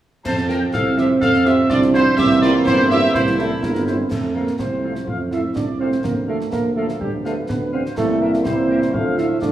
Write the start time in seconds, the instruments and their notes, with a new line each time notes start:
0.24 tuba F2, trombone section F3 C4, euphonium F4, woodwind section C5, trumpet section A5, concert bass drum, snare, crash
0.37 snare
0.49 french horn section F3 C4 F4, woodwind section A#4, trumpet section G5, snare
0.73 tuba C2, euphonium C4, woodwind section A4, trumpet section F5, concert bass drum, snare
0.97 french horn section F3 C4 F4, woodwind section G4, trumpet section E5, snare
1.21 tuba F2, woodwind section A4, trumpet section F5, concert bass drum, snare
1.34 snare
1.45 french horn section F3 C4 F4, woodwind section G4, trumpet section E5, snare
1.70 tuba C2, euphonium D4, woodwind section F4, trumpet section D5, concert bass drum, snare
1.82 snare
1.94 french horn section F3 C4 F4, woodwind section E4, trumpet section C5, snare
2.17 tuba C2, trombone section E3 A#3, euphonium C4, woodwind section G4, trumpet section E5, concert bass drum, snare, crash
2.31 snare
2.42 french horn section G3 A#3 E4, woodwind section F4, trumpet section D5, snare
2.65 tuba G1, woodwind section E4, trumpet section C5, concert bass drum, snare
2.90 french horn section G3 A#3 E4, woodwind section G4, trumpet section E5, snare
3.14 tuba C2, woodwind section E4, trumpet section C5, concert bass drum, snare
3.27 snare
3.38 french horn section G3 A#3 E4, euphonium A3, trumpet section A4, snare
3.62 tuba G1, euphonium A#3, trumpet section A#4, concert bass drum, snare
3.75 snare
3.87 french horn section G3 A#3 E4, euphonium C4, trumpet section C5, snare
4.11 tuba F2, trombone section F3 A3, euphonium A3, trumpet section A4, concert bass drum, snare, crash
4.35 french horn section F3 A3 F4, euphonium A#3, woodwind section A4 F5, trumpet section A#4
4.47 snare
4.59 tuba C2, euphonium C4, trumpet section C5, concert bass drum, snare
4.83 french horn section F3 A3 F4, woodwind section A4 F5
4.95 snare
5.07 tuba F2, euphonium F4, trumpet section F5, concert bass drum
5.31 french horn section F3 A3 F4, euphonium E4, woodwind section A4 F5, trumpet section E5, snare
5.55 tuba C2, euphonium D4, trumpet section D5, concert bass drum, snare
5.80 french horn section F3 A3 F4, euphonium C4, woodwind section A4 F5, trumpet section C5
5.92 snare
6.03 tuba D2, trombone section F3 A#3, euphonium A#3, trumpet section A#4, concert bass drum, snare
6.28 french horn section F3 A#3 F4, euphonium A3, trumpet section A4, woodwind section A#4 F5
6.41 snare
6.52 tuba D2, euphonium A#3, trumpet section A#4, concert bass drum, snare
6.76 french horn section F3 A#3 F4, euphonium A3, trumpet section A4, woodwind section A#4 F5
6.89 snare
7.00 tuba D2, euphonium G3, trombone section B3, trumpet section G4, concert bass drum
7.25 french horn section G3 B3 F4, euphonium A3, trumpet section A4, woodwind section B4 F5, snare
7.48 tuba D2, euphonium B3, trumpet section B4, concert bass drum, snare
7.72 french horn section G3 B3 F4, euphonium C4, woodwind section B4 F5, trumpet section C5
7.86 snare
7.97 tuba C2, trombone section E3 A#3, french horn section G3 A#3 E4, euphonium A3, trumpet section A4, concert bass drum, snare, crash
8.21 euphonium A#3, trumpet section A#4, woodwind section A#4 E5
8.34 snare
8.44 tuba C2, trombone section E3 A#3, french horn section G3 A#3 E4, euphonium C4, trumpet section C5, concert bass drum, snare
8.70 woodwind section A#4 E5
8.82 snare
8.92 tuba D2, trombone section F3 A3, french horn section F3 A3 F4, euphonium F4, trumpet section F5, concert bass drum
9.17 euphonium E4, woodwind section A4 F5, trumpet section E5, snare
9.41 tuba D2, trombone section F3 A3, french horn section F3 A3 F4, euphonium D4, trumpet section D5, concert bass drum, snare